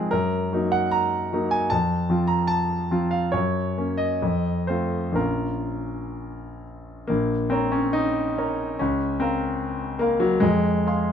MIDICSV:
0, 0, Header, 1, 2, 480
1, 0, Start_track
1, 0, Key_signature, -5, "minor"
1, 0, Tempo, 793651
1, 73, Time_signature, 2, 2, 24, 8
1, 1513, Tempo, 840336
1, 1993, Tempo, 879765
1, 2473, Tempo, 955414
1, 3913, Tempo, 851064
1, 4873, Tempo, 807537
1, 5833, Tempo, 895522
1, 6217, End_track
2, 0, Start_track
2, 0, Title_t, "Grand piano"
2, 0, Program_c, 0, 0
2, 0, Control_c, 0, 64, 127
2, 0, Note_on_c, 0, 44, 51
2, 0, Note_on_c, 0, 53, 36
2, 0, Note_on_c, 0, 56, 40
2, 0, Note_on_c, 0, 60, 42
2, 0, Note_on_c, 0, 68, 61
2, 0, Note_on_c, 0, 70, 69
2, 0, Note_on_c, 0, 72, 64
2, 66, Note_off_c, 0, 70, 0
2, 66, Note_on_c, 0, 70, 78
2, 71, Note_off_c, 0, 68, 0
2, 76, Note_on_c, 0, 42, 51
2, 82, Control_c, 0, 64, 0
2, 83, Note_off_c, 0, 56, 0
2, 86, Note_off_c, 0, 60, 0
2, 86, Note_off_c, 0, 72, 0
2, 89, Note_off_c, 0, 44, 0
2, 89, Note_off_c, 0, 53, 0
2, 168, Control_c, 0, 64, 127
2, 309, Note_off_c, 0, 42, 0
2, 319, Note_on_c, 0, 54, 38
2, 321, Note_on_c, 0, 58, 38
2, 326, Note_on_c, 0, 63, 44
2, 433, Note_off_c, 0, 70, 0
2, 434, Note_on_c, 0, 78, 72
2, 553, Note_on_c, 0, 82, 78
2, 558, Note_off_c, 0, 78, 0
2, 781, Note_off_c, 0, 54, 0
2, 782, Note_off_c, 0, 58, 0
2, 785, Note_off_c, 0, 63, 0
2, 804, Note_on_c, 0, 54, 39
2, 809, Note_on_c, 0, 58, 41
2, 809, Note_on_c, 0, 63, 42
2, 913, Note_on_c, 0, 80, 73
2, 919, Note_off_c, 0, 82, 0
2, 1017, Note_off_c, 0, 54, 0
2, 1019, Note_off_c, 0, 58, 0
2, 1019, Note_off_c, 0, 63, 0
2, 1027, Note_on_c, 0, 81, 81
2, 1035, Note_off_c, 0, 80, 0
2, 1037, Note_on_c, 0, 41, 52
2, 1051, Control_c, 0, 64, 0
2, 1148, Control_c, 0, 64, 127
2, 1266, Note_off_c, 0, 41, 0
2, 1267, Note_on_c, 0, 53, 38
2, 1271, Note_on_c, 0, 60, 38
2, 1276, Note_on_c, 0, 65, 39
2, 1375, Note_on_c, 0, 82, 75
2, 1387, Note_off_c, 0, 81, 0
2, 1497, Note_on_c, 0, 81, 80
2, 1505, Note_off_c, 0, 82, 0
2, 1722, Note_off_c, 0, 53, 0
2, 1724, Note_off_c, 0, 60, 0
2, 1727, Note_off_c, 0, 65, 0
2, 1746, Note_on_c, 0, 53, 38
2, 1748, Note_on_c, 0, 60, 40
2, 1751, Note_on_c, 0, 65, 42
2, 1860, Note_on_c, 0, 77, 61
2, 1862, Note_off_c, 0, 81, 0
2, 1970, Note_off_c, 0, 53, 0
2, 1971, Note_off_c, 0, 60, 0
2, 1972, Note_off_c, 0, 65, 0
2, 1979, Note_on_c, 0, 73, 67
2, 1987, Note_on_c, 0, 42, 54
2, 1989, Note_off_c, 0, 77, 0
2, 2005, Control_c, 0, 64, 0
2, 2118, Control_c, 0, 64, 127
2, 2222, Note_off_c, 0, 42, 0
2, 2231, Note_on_c, 0, 58, 32
2, 2234, Note_on_c, 0, 61, 38
2, 2338, Note_on_c, 0, 75, 66
2, 2346, Note_off_c, 0, 73, 0
2, 2451, Note_off_c, 0, 58, 0
2, 2453, Note_off_c, 0, 61, 0
2, 2474, Note_on_c, 0, 41, 46
2, 2483, Control_c, 0, 64, 0
2, 2568, Control_c, 0, 64, 127
2, 2698, Note_off_c, 0, 41, 0
2, 2699, Note_off_c, 0, 75, 0
2, 2700, Note_on_c, 0, 72, 57
2, 2709, Note_on_c, 0, 60, 32
2, 2710, Note_on_c, 0, 57, 34
2, 2712, Note_on_c, 0, 65, 39
2, 2924, Note_on_c, 0, 34, 42
2, 2931, Note_on_c, 0, 58, 31
2, 2932, Note_off_c, 0, 57, 0
2, 2932, Note_off_c, 0, 60, 0
2, 2934, Note_off_c, 0, 65, 0
2, 2937, Note_on_c, 0, 61, 33
2, 2942, Note_on_c, 0, 70, 60
2, 2943, Note_on_c, 0, 65, 33
2, 2947, Note_off_c, 0, 72, 0
2, 2962, Control_c, 0, 64, 0
2, 3082, Control_c, 0, 64, 127
2, 3681, Note_off_c, 0, 70, 0
2, 3881, Note_off_c, 0, 34, 0
2, 3885, Note_off_c, 0, 58, 0
2, 3888, Note_off_c, 0, 61, 0
2, 3891, Note_off_c, 0, 65, 0
2, 3907, Note_on_c, 0, 58, 68
2, 3916, Note_on_c, 0, 34, 51
2, 3927, Control_c, 0, 64, 0
2, 4043, Control_c, 0, 64, 127
2, 4144, Note_on_c, 0, 60, 65
2, 4150, Note_off_c, 0, 34, 0
2, 4152, Note_off_c, 0, 58, 0
2, 4152, Note_on_c, 0, 70, 39
2, 4157, Note_on_c, 0, 73, 38
2, 4161, Note_on_c, 0, 82, 43
2, 4268, Note_on_c, 0, 61, 69
2, 4270, Note_off_c, 0, 60, 0
2, 4388, Note_on_c, 0, 63, 82
2, 4392, Note_off_c, 0, 61, 0
2, 4612, Note_off_c, 0, 70, 0
2, 4615, Note_off_c, 0, 73, 0
2, 4617, Note_off_c, 0, 82, 0
2, 4643, Note_on_c, 0, 70, 40
2, 4643, Note_on_c, 0, 73, 39
2, 4643, Note_on_c, 0, 82, 41
2, 4856, Note_off_c, 0, 70, 0
2, 4856, Note_off_c, 0, 73, 0
2, 4856, Note_off_c, 0, 82, 0
2, 4872, Note_off_c, 0, 63, 0
2, 4875, Note_on_c, 0, 61, 65
2, 4885, Note_on_c, 0, 37, 54
2, 4888, Control_c, 0, 64, 0
2, 4985, Control_c, 0, 64, 127
2, 5115, Note_on_c, 0, 60, 70
2, 5118, Note_off_c, 0, 37, 0
2, 5120, Note_off_c, 0, 61, 0
2, 5124, Note_on_c, 0, 70, 38
2, 5126, Note_on_c, 0, 77, 39
2, 5127, Note_on_c, 0, 82, 42
2, 5572, Note_off_c, 0, 70, 0
2, 5573, Note_off_c, 0, 77, 0
2, 5574, Note_off_c, 0, 82, 0
2, 5587, Note_on_c, 0, 58, 75
2, 5591, Note_off_c, 0, 60, 0
2, 5599, Note_on_c, 0, 77, 42
2, 5600, Note_on_c, 0, 70, 40
2, 5602, Note_on_c, 0, 82, 43
2, 5710, Note_off_c, 0, 58, 0
2, 5710, Note_on_c, 0, 54, 74
2, 5814, Note_off_c, 0, 70, 0
2, 5814, Note_off_c, 0, 77, 0
2, 5815, Note_off_c, 0, 82, 0
2, 5831, Note_on_c, 0, 56, 80
2, 5833, Note_off_c, 0, 54, 0
2, 5839, Note_on_c, 0, 41, 55
2, 5845, Control_c, 0, 64, 0
2, 5946, Control_c, 0, 64, 127
2, 6067, Note_off_c, 0, 41, 0
2, 6081, Note_on_c, 0, 77, 41
2, 6083, Note_on_c, 0, 68, 42
2, 6085, Note_on_c, 0, 84, 45
2, 6217, Note_off_c, 0, 56, 0
2, 6217, Note_off_c, 0, 68, 0
2, 6217, Note_off_c, 0, 77, 0
2, 6217, Note_off_c, 0, 84, 0
2, 6217, End_track
0, 0, End_of_file